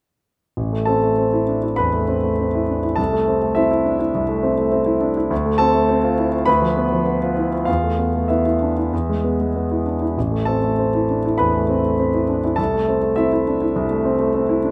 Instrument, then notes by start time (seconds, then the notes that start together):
grand piano
0.57 A1
0.73 A3
0.85 C4 A4 A5
1.03 A3
1.18 C4
1.33 E4
1.48 D4
1.63 E4
1.76 E2 B4 B5
1.93 A3
2.08 C4
2.24 A3
2.40 C4
2.55 E4
2.69 D4
2.83 E4
2.96 C2 A4 A5
3.13 A3
3.28 C4
3.43 A3
3.55 C4 E4 E5
3.71 E4
3.85 D4
3.99 E4
4.15 C2
4.29 A3
4.43 C4
4.57 A3
4.72 C4
4.86 E4
5.01 D4
5.17 E4
5.31 D2
5.46 A3
5.58 C4 A4 A5
5.75 A3
5.89 C4
6.04 F4
6.18 E4
6.33 F4
6.46 D2 B4 B5
6.62 F3
6.77 B3
6.92 F3
7.07 B3
7.22 F4
7.37 E4
7.52 F4
7.65 E2 F4 F5
7.84 A3
7.99 B3
8.15 A3
8.28 B3 E4 E5
8.46 E4
8.62 D4
8.77 E4
8.93 E2
9.09 G#3
9.24 B3
9.41 G#3
9.56 B3
9.71 E4
9.86 D4
10.02 E4
10.18 A1
10.32 A3
10.45 C4 A4 A5
10.64 A3
10.79 C4
10.95 E4
11.10 D4
11.25 E4
11.38 E2 B4 B5
11.55 A3
11.69 C4
11.85 A3
11.99 C4
12.14 E4
12.29 D4
12.44 E4
12.56 C2 A4 A5
12.74 A3
12.88 C4
13.03 A3
13.16 C4 E4 E5
13.33 E4
13.47 D4
13.62 E4
13.76 C2
13.91 A3
14.05 C4
14.19 A3
14.34 C4
14.49 E4
14.64 D4